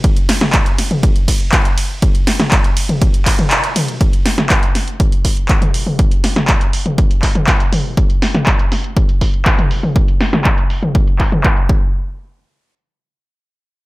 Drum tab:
RD |--x---x---x---x-|--x---x---x---x-|----------------|----------------|
HH |xxoxxxoxxxoxxxo-|xxoxxxoxxxoxxxox|xxoxxxoxxxoxxxo-|xxoxxxoxxxoxxxo-|
CP |----x-------x---|----x-----x-x---|----x-------x---|----x-----x-x---|
SD |--oo--o---------|--oo------------|--oo--o---------|--oo------------|
T2 |---o---o--------|---o---o---o--o-|---o---------o-o|---o---o---o--o-|
BD |o---o---o-o-o---|o---o---o-o-----|o---o---o-o-o---|o---o---o-o-o---|

RD |----------------|----------------|----------------|
HH |xxoxxxoxxxoxxxo-|xxoxxxoxxxoxxx--|----------------|
CP |----x-------x---|----x-----x-x---|----------------|
SD |--oo--o---------|--oo------------|----------------|
T2 |---o---------o-o|---o---o---o----|----------------|
BD |o---o---o-o-o---|o---o---o-o-o-o-|----------------|